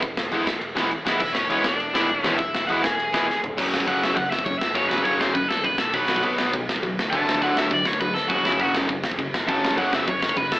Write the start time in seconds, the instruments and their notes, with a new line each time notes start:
0.02 picked electric bass E1, kick, ride
0.17 snare
0.32 picked electric bass E2, distorted electric guitar E3 G#3 B3 E4, ride
0.46 picked electric bass E1, snare
0.61 picked electric bass E1, ride
0.75 picked electric bass B1, distorted electric guitar E3 G#3 B3 E4, snare
0.91 picked electric bass G#1, ride
1.05 picked electric bass E1, distorted electric guitar E3 G#3 B3 E4, snare
1.19 picked electric bass E1, overdriven electric guitar E4 E5, kick, crash
1.33 picked electric bass E1, overdriven electric guitar C#4 C#5, snare
1.50 picked electric bass E1, distorted electric guitar E3 G#3 B3 E4, overdriven electric guitar C#4 C#5, ride
1.64 picked electric bass E1, snare
1.68 overdriven electric guitar D4 D5
1.79 picked electric bass E1, ride
1.94 distorted electric guitar E3 G#3 B3 E4, snare
2.09 picked electric bass E1, ride
2.19 overdriven electric guitar C#5
2.24 picked electric bass E1, distorted electric guitar E3 G#3 B3 E4, snare
2.37 picked electric bass E1, overdriven electric guitar E4 E5, kick, ride
2.55 snare
2.67 picked electric bass E2, distorted electric guitar E3 G#3 B3 E4, overdriven electric guitar F#4 F#5, ride
2.83 picked electric bass E1, overdriven electric guitar G#4 G#5, snare
2.99 picked electric bass E1, ride
3.14 picked electric bass B1, distorted electric guitar E3 G#3 B3 E4, snare
3.29 picked electric bass G#1, snare
3.43 picked electric bass E1, floor tom
3.57 picked electric bass F#1, distorted electric guitar F#2 C#3 F#3, kick, crash
3.74 picked electric bass F#1, snare
3.80 kick
3.87 picked electric bass F#1, distorted electric guitar F#2 C#3 F#3, overdriven electric guitar F#5, kick, crash
4.02 picked electric bass F#1, overdriven electric guitar E5, snare
4.15 picked electric bass F#1, distorted electric guitar F#2 C#3, overdriven electric guitar F#5, kick, crash
4.31 overdriven electric guitar E5, snare
4.39 kick
4.44 picked electric bass F#1, distorted electric guitar F#2 C#3, overdriven electric guitar C#5, kick, crash
4.59 picked electric bass F#1, overdriven electric guitar E5, snare
4.74 picked electric bass F#1, distorted electric guitar F#2 C#3 F#3, overdriven electric guitar C#5, kick, crash
4.89 picked electric bass F#1, overdriven electric guitar B4, snare
4.98 kick
5.03 picked electric bass F#1, distorted electric guitar F#2 C#3 F#3, overdriven electric guitar C#5, kick, crash
5.21 picked electric bass F#1, overdriven electric guitar C5, snare
5.33 picked electric bass F#1, distorted electric guitar F#2 C#3, overdriven electric guitar B4, kick, crash
5.48 picked electric bass F#1, overdriven electric guitar A4, snare
5.57 kick
5.63 picked electric bass A#1, distorted electric guitar F#2 C#3, overdriven electric guitar B4, kick, crash
5.78 picked electric bass B1, overdriven electric guitar A4, snare
5.93 picked electric bass B1, distorted electric guitar B2 F#3 B3, overdriven electric guitar B4, kick, crash
6.08 picked electric bass B1, snare
6.16 kick
6.23 picked electric bass B1, distorted electric guitar B2 F#3 B3, kick, crash
6.38 picked electric bass B1, snare
6.53 picked electric bass B1, distorted electric guitar B2 F#3, kick, crash
6.69 snare
6.76 kick
6.83 picked electric bass E2, distorted electric guitar B2 F#3, kick, crash
6.98 picked electric bass D2, snare
7.10 picked electric bass D2, distorted electric guitar D3 F#3 A3, overdriven electric guitar A5, kick, crash
7.26 picked electric bass D2, snare
7.35 kick
7.41 picked electric bass D2, distorted electric guitar D3 F#3 A3, overdriven electric guitar F#5, kick, crash
7.57 picked electric bass D2, overdriven electric guitar E5, snare
7.71 picked electric bass D2, distorted electric guitar D3 F#3, overdriven electric guitar D5, kick, crash
7.85 picked electric bass D2, overdriven electric guitar C#5, snare
7.93 kick
8.00 picked electric bass D2, distorted electric guitar D3 F#3, overdriven electric guitar B4, kick, crash
8.14 picked electric bass D2, overdriven electric guitar A4, snare
8.28 picked electric bass F#1, distorted electric guitar F#2 C#3 F#3, overdriven electric guitar F#4, kick, crash
8.43 picked electric bass F#1, overdriven electric guitar E4, snare
8.52 kick
8.58 picked electric bass F#1, distorted electric guitar F#2 C#3 F#3, overdriven electric guitar F#4, kick, crash
8.73 picked electric bass F#1, snare
8.89 picked electric bass F#1, distorted electric guitar F#2 C#3, kick, crash
9.04 snare
9.11 kick
9.18 picked electric bass F#1, distorted electric guitar F#2 C#3, kick, crash
9.33 picked electric bass F#1, snare
9.48 picked electric bass F#1, distorted electric guitar F#2 C#3 F#3, overdriven electric guitar A5, kick, crash
9.63 picked electric bass F#1, snare
9.71 kick
9.78 picked electric bass F#1, distorted electric guitar F#2 C#3 F#3, overdriven electric guitar F#5, kick, crash
9.93 picked electric bass F#1, overdriven electric guitar E5, snare
10.07 picked electric bass F#1, distorted electric guitar F#2 C#3, overdriven electric guitar C#5, kick, crash
10.21 picked electric bass F#1, overdriven electric guitar C#5, snare
10.29 kick
10.36 picked electric bass F#1, distorted electric guitar F#2 C#3, overdriven electric guitar B4, kick, crash
10.52 picked electric bass B1, overdriven electric guitar A4, snare